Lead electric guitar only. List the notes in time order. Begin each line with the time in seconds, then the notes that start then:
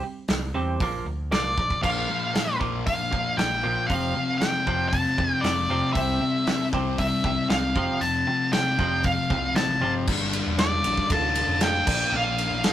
1.32 D5
1.83 F5
2.87 F5
3.37 G5
3.87 F5
4.38 G5
4.89 A5
5.33 G5
5.41 D5
5.93 E5
6.99 E5
7.50 F5
8.01 A5
8.53 G5
9.05 F5
9.55 A5
10.59 D5
11.12 A5
11.64 G5
12.16 F5